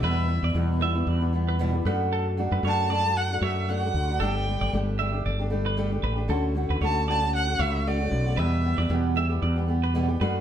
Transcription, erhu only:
X:1
M:4/4
L:1/8
Q:"Swing 16ths" 1/4=115
K:Edor
V:1 name="Erhu"
e2 z6 | z2 a a f e f2 | g2 z6 | z2 a a f e d2 |
e2 z6 |]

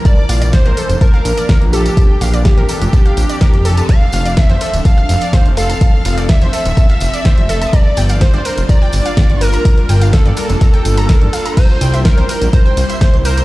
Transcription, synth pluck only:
X:1
M:4/4
L:1/16
Q:1/4=125
K:F
V:1 name="Synth pluck"
a z f d z B A z a f z d B z A a | a z f d z B A z a f z d B z A a | a z f d z c A z a f z d c z A a | a z f d z c A z a f z d c z A a |
b z g f z d B z b g z f d z B b | b z g f z d B z b g z b B z f b | b z g e z c B z b g z e c z B b |]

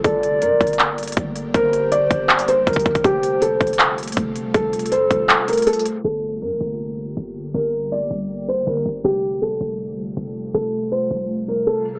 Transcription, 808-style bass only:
X:1
M:4/4
L:1/16
Q:1/4=160
K:Gm
V:1 name="808-style bass" clef=bass
G,,,4 G,, G,,, G,,,6 G,,,4 | G,,,6 G,,,6 G,,,2 G,,,2 | F,,,6 F,,,6 F,,,4 | F,,,6 F,,,2 z8 |
G,,,4 G,, G,,, G,,,6 G,,,4 | G,,,6 G,,,6 G,,,2 G,,,2 | F,,,6 F,,,6 F,,,4 | F,,,6 F,,,6 z4 |]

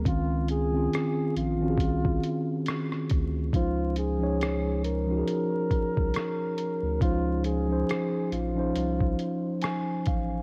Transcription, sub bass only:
X:1
M:4/4
L:1/16
Q:"Swing 16ths" 1/4=69
K:Db
V:1 name="Sub bass" clef=bass
D,,4 z2 B,,,2 C,,2 z4 =D,,2 | D,,8 z3 C,, z3 =D,, | D,,4 z2 B,,,2 C,,2 z4 =A,,,2 |]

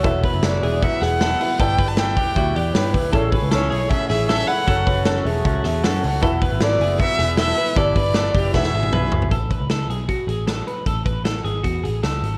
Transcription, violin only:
X:1
M:4/4
L:1/16
Q:1/4=155
K:A
V:1 name="Violin"
z4 d4 e2 f6 | =g3 a g8- g2 z2 | z4 c4 e2 e2 e2 f2- | f4 z12 |
z4 d4 e4 e4 | d8 e6 z2 | z16 | z16 |]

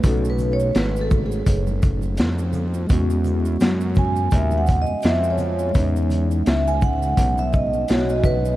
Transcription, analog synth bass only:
X:1
M:4/4
L:1/16
Q:"Swing 16ths" 1/4=84
K:E
V:1 name="Analog synth bass" clef=bass
B,,,4 G,,,4 F,,,4 =F,,4 | E,,4 F,,4 D,,3 =F,, F,,4 | E,,4 C,,4 B,,,4 B,,,4 |]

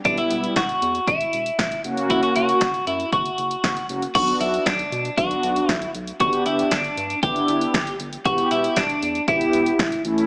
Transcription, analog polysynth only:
X:1
M:4/4
L:1/16
Q:1/4=117
K:Bm
V:1 name="Analog polysynth"
[G,B,E]4 z8 z2 [^A,CF]2- | [^A,CF]4 z8 z2 [A,CF] z | [B,DF]4 z4 [B,DF]4 z4 | [B,DG]4 z4 [B,DE]4 z4 |
[B,EG]4 z4 [B,EG]4 z2 [A,CE]2 |]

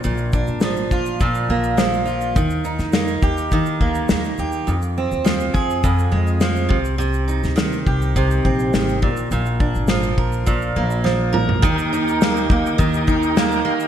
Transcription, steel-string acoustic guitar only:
X:1
M:4/4
L:1/8
Q:1/4=104
K:Eb
V:1 name="Steel-string acoustic guitar"
B,, D F, F B,, B, F, F | E, E B, G E, B, B, G | F,, C F, A F,, A, F, C, | C, E E, G C, C E, B,, |
B,, D F, B B,, B, F, B | E, E B, B, E, E B, B, |]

